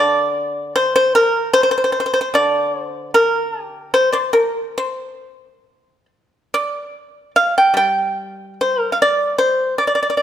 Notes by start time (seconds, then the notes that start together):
Already playing: D3 D5
0.76 C5
0.96 C5
1.15 A#4
1.53 C5
1.63 C5
1.71 C5
1.78 C5
1.84 C5
1.92 C5
2.00 C5
2.06 C5
2.13 C5
2.21 C5
2.34 D3 D5
2.83 C5
3.14 A#4
3.65 G4
3.94 C5
4.12 C5 D5
4.33 A#4
4.78 C5
6.54 D5
7.36 F5
7.58 G5
7.74 G3 G5
8.61 C5
8.92 F5
9.02 D5
9.38 C5
9.78 D5
9.87 D5
9.95 D5
10.03 D5
10.10 D5
10.17 D5